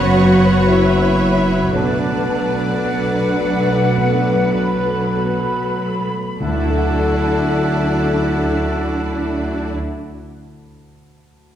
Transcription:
Already playing: F#1 F#2 F#3 B3 C#4 F#4 B4 C#5 F#5 B5
0.04 C#3
0.69 C#4 E4 F#4 B4 C#5 E5
1.04 B4
1.39 C#4
1.72 B1 B2 F#3 A3 D4 F#4 A4 B4 D5 F#5 A5
2.11 F#3
2.47 F#4
2.82 B3 F#4 A4 F#5
3.21 B4
3.57 A3
3.95 B1 B2
4.34 F#3
4.52 B5
4.73 F#4
5.13 B3 F#4 A4 B5
5.56 B4
5.99 A3
6.39 D2 D3 F#3 D4 E4 F#4 A4 D5 E5 F#5 A5
6.48 D3 A3
6.55 D4 E4
6.62 F#4
6.69 A4 E5
6.76 F#5

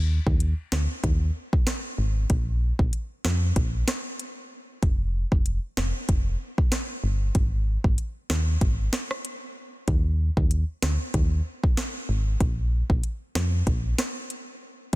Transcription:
Already playing: D#2
0.27 D#2, kick
0.40 closed hi-hat
0.72 D2, cross-stick, snare
1.04 D#2, kick, closed hi-hat
1.53 kick
1.67 cross-stick, snare, closed hi-hat
1.98 G#1
2.30 A#1, kick, closed hi-hat
2.79 A#1, kick
2.93 closed hi-hat
3.25 F2, cross-stick, snare
3.56 A#1, kick, closed hi-hat
3.88 cross-stick, snare
4.19 closed hi-hat
4.83 F1, kick, closed hi-hat
5.32 F1, kick
5.46 closed hi-hat
5.77 F1, cross-stick, snare
6.09 F1, kick, closed hi-hat
6.58 kick
6.72 cross-stick, snare, closed hi-hat
7.04 G1
7.35 G#1, kick, closed hi-hat
7.84 G#1, kick
7.98 closed hi-hat
8.30 D#2, cross-stick, snare
8.61 G#1, kick, closed hi-hat
8.93 cross-stick, snare
9.11 cross-stick
9.25 closed hi-hat
9.88 D#2, kick, closed hi-hat
10.37 D#2, kick
10.51 closed hi-hat
10.82 D2, cross-stick, snare
11.14 D#2, kick, closed hi-hat
11.64 kick
11.77 cross-stick, snare, closed hi-hat
12.09 G#1
12.40 A#1, kick, closed hi-hat
12.90 A#1, kick
13.04 closed hi-hat
13.35 F2, cross-stick, snare
13.67 A#1, kick, closed hi-hat
13.98 cross-stick, snare
14.30 closed hi-hat

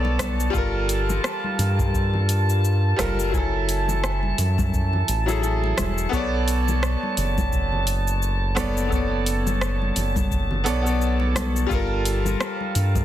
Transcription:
Already playing: B1 B3 A4 C#5 D5 A5
0.05 muted conga
0.19 kick, cross-stick, open hi-hat, high conga, cabasa
0.40 cabasa
0.50 G1 G3 F4, kick
0.55 A4 A#4, cabasa
0.89 open hi-hat, cabasa
1.09 muted conga, high conga, low conga, cabasa
1.24 cross-stick, cabasa
1.44 high conga
1.58 G2, open hi-hat, low conga, cabasa
1.79 kick, muted conga, high conga, cabasa
1.94 kick, cabasa
2.14 low conga
2.29 open hi-hat, cabasa
2.50 cabasa
2.65 cabasa
2.96 F#1 G3 F4 A4 A#4, kick, cross-stick, open hi-hat, high conga, cabasa
3.20 cabasa
3.30 F#3 E4, kick
3.34 A4 G#5, cabasa
3.69 open hi-hat, cabasa
3.88 muted conga, high conga, low conga, cabasa
4.04 cross-stick, cabasa
4.23 high conga
4.38 F#2, open hi-hat, low conga, cabasa
4.58 kick, muted conga, high conga, cabasa
4.73 kick, cabasa
4.93 low conga
5.08 A1, open hi-hat, muted conga, cabasa
5.26 F#3 E4 G#4 A4, cabasa
5.41 F#3 E4 A4 G#5, cabasa
5.64 muted conga
5.78 E1, kick, cross-stick, open hi-hat, high conga, cabasa
5.98 cabasa
6.09 B1 B3 A4, kick
6.13 C#5 D5, cabasa
6.48 open hi-hat, cabasa
6.68 muted conga, high conga, low conga, cabasa
6.83 cross-stick, cabasa
7.03 high conga
7.17 F#1, open hi-hat, low conga, cabasa
7.38 kick, muted conga, high conga, cabasa
7.52 kick, cabasa
7.72 low conga
7.87 open hi-hat, cabasa
8.08 cabasa
8.22 cabasa
8.55 B3 A4 C#5 D5, kick, cross-stick, open hi-hat, high conga, cabasa
8.77 cabasa
8.88 B3 A4, kick
8.92 C#5 D5, cabasa
9.26 open hi-hat, cabasa
9.46 muted conga, high conga, low conga, cabasa
9.61 cross-stick, cabasa
9.82 high conga
9.96 F#1, open hi-hat, low conga, cabasa
10.16 kick, muted conga, high conga, cabasa
10.31 kick, cabasa
10.51 low conga
10.64 B1 B3 A4 C#5 D5, open hi-hat, muted conga, cabasa
10.82 B3 A4
10.87 C#5 D5, cabasa
11.02 cabasa
11.20 muted conga
11.35 kick, cross-stick, open hi-hat, high conga, cabasa
11.56 cabasa
11.67 G3 F4, kick
11.71 G1 A4 A#4, cabasa
12.05 open hi-hat, cabasa
12.25 muted conga, high conga, low conga, cabasa
12.40 cross-stick, cabasa
12.60 high conga
12.75 G2, open hi-hat, low conga, cabasa
12.95 kick, muted conga, high conga, cabasa

